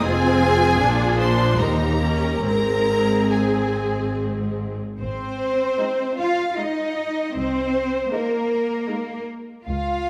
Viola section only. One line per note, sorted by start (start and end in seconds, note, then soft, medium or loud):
0.02 0.80 C4 medium
0.02 0.79 F4 medium
0.80 1.18 D4 medium
0.80 1.60 F4 medium
1.20 1.60 D4 medium
1.61 2.03 D#4 medium
1.61 2.43 G4 medium
2.03 2.44 C#4 medium
2.44 4.79 C4 medium
2.44 4.79 G#4 medium
5.80 6.39 G#3 medium
5.80 6.39 D#4 medium
6.59 7.16 G#3 medium
6.59 7.16 D#4 medium
8.13 8.70 G#3 medium
8.13 8.70 D#4 medium
8.88 9.47 G#3 medium
8.88 9.47 D#4 medium